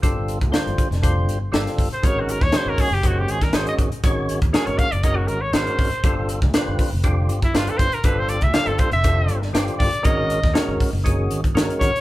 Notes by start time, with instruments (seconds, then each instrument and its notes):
0.03 fingered electric bass G1, tonewheel organ D3 G3 C4 F4 A4, kick, closed hi-hat
0.28 closed hi-hat
0.41 fingered electric bass D2, kick, closed hi-hat
0.52 tonewheel organ D3 G3 C4 F4 C5, muted fingered electric bass stroke, snare, closed hi-hat
0.67 fingered electric bass G1, closed hi-hat
0.78 muted fingered electric bass stroke, kick, closed hi-hat
0.91 fingered electric bass F1, snare, closed hi-hat
1.02 tonewheel organ D3 G3 C4 F4 C5, kick, closed hi-hat
1.28 fingered electric bass G1, closed hi-hat
1.52 fingered electric bass G1, tonewheel organ D3 G3 C4 F4 A4, snare, closed hi-hat
1.67 snare, closed hi-hat
1.78 fingered electric bass G1, kick, open hi-hat
1.93 trumpet C5, closed hi-hat
2.03 fingered electric bass G#1, tonewheel organ D#3 G#3 C#4 F#4 A#4, trumpet C#5, kick, closed hi-hat
2.20 trumpet F#4
2.29 trumpet A#4, closed hi-hat
2.41 fingered electric bass D#2, trumpet C#5, kick, snare
2.52 tonewheel organ D#3 G#3 C#4 F#4 C#5, muted fingered electric bass stroke, snare, closed hi-hat
2.56 trumpet C5
2.66 fingered electric bass G#1, trumpet A#4
2.78 trumpet G#4, kick, open hi-hat
2.91 fingered electric bass F#1, trumpet G4
3.03 tonewheel organ D#3 G#3 C#4 F#4 C5, kick, closed hi-hat
3.07 trumpet F#4
3.19 trumpet G4
3.28 fingered electric bass G#1, trumpet G#4, closed hi-hat
3.41 trumpet A#4, kick, snare, closed hi-hat
3.53 fingered electric bass G#1, tonewheel organ D#3 G#3 C#4 F#4 G#4, trumpet C5, snare, closed hi-hat
3.67 trumpet D#5, closed hi-hat
3.78 fingered electric bass G#1, kick, closed hi-hat
3.92 muted fingered electric bass stroke, closed hi-hat
4.04 fingered electric bass G#1, tonewheel organ D#3 G#3 C#4 F#4 C#5, kick, closed hi-hat
4.29 closed hi-hat
4.42 fingered electric bass D#2, kick, closed hi-hat
4.53 tonewheel organ D#3 G#3 C#4 F#4 A#4, trumpet G#4, snare, closed hi-hat
4.67 fingered electric bass G#1, trumpet C#5, closed hi-hat
4.78 trumpet F5, muted fingered electric bass stroke, kick, closed hi-hat
4.92 fingered electric bass F#1, trumpet D5, closed hi-hat
5.03 tonewheel organ D#3 G#3 C#4 F#4 A#4, trumpet D#5, kick, closed hi-hat
5.16 trumpet F#4
5.28 fingered electric bass G#1, trumpet A#4, closed hi-hat
5.41 trumpet C#5
5.53 fingered electric bass G#1, tonewheel organ D#3 G#3 C#4 F#4 A#4, trumpet C5, snare, closed hi-hat
5.67 closed hi-hat
5.79 fingered electric bass G#1, kick, open hi-hat
5.92 muted fingered electric bass stroke, closed hi-hat
6.04 fingered electric bass G1, tonewheel organ D3 G3 C4 F4 A4, kick, closed hi-hat
6.29 closed hi-hat
6.42 fingered electric bass D2, kick, snare
6.54 tonewheel organ D3 G3 C4 F4 B4, muted fingered electric bass stroke, snare, closed hi-hat
6.68 fingered electric bass G1
6.79 kick, open hi-hat
6.92 fingered electric bass F1
7.03 tonewheel organ D3 G3 C4 F4 G4, kick, closed hi-hat
7.29 fingered electric bass G1, closed hi-hat
7.42 trumpet E4, kick, closed hi-hat
7.54 fingered electric bass G1, tonewheel organ D3 G3 C4 F4 B4, trumpet F4, snare, closed hi-hat
7.67 trumpet A4, closed hi-hat
7.78 fingered electric bass G1, trumpet C5, kick, closed hi-hat
7.92 trumpet A#4, closed hi-hat
8.04 fingered electric bass G1, tonewheel organ D3 G3 C4 F4 A4, trumpet B4, kick, closed hi-hat
8.19 trumpet C5
8.28 trumpet D5, closed hi-hat
8.41 fingered electric bass D2, trumpet E5, kick, closed hi-hat
8.53 tonewheel organ D3 G3 C4 F4 A4, trumpet F5, muted fingered electric bass stroke, snare, closed hi-hat
8.66 fingered electric bass G1, trumpet A4, closed hi-hat
8.78 trumpet C5, kick, closed hi-hat
8.92 fingered electric bass F1, trumpet E5, closed hi-hat
9.04 tonewheel organ D3 G3 C4 F4 A4, kick, closed hi-hat
9.28 fingered electric bass G1, closed hi-hat
9.42 snare
9.53 fingered electric bass G1, tonewheel organ D3 G3 C4 F4 G4, snare, closed hi-hat
9.68 closed hi-hat
9.79 fingered electric bass G1, trumpet D5, kick, open hi-hat
9.93 muted fingered electric bass stroke, closed hi-hat
10.03 fingered electric bass G#1, tonewheel organ D#3 G#3 C#4 F#4 A#4, trumpet D#5, kick, closed hi-hat
10.30 closed hi-hat
10.44 fingered electric bass D#2, kick, snare
10.53 tonewheel organ D#3 G#3 C#4 F#4 A#4, muted fingered electric bass stroke, snare, closed hi-hat
10.68 fingered electric bass G#1
10.80 kick, open hi-hat
10.93 fingered electric bass F#1
11.04 tonewheel organ D#3 G#3 C#4 F#4 G#4, kick, closed hi-hat
11.30 fingered electric bass G#1, closed hi-hat
11.44 kick, closed hi-hat
11.54 fingered electric bass G#1, tonewheel organ D#3 G#3 C#4 F#4 A#4, snare, closed hi-hat
11.70 closed hi-hat
11.79 fingered electric bass G#1, trumpet C#5, kick, closed hi-hat
11.96 closed hi-hat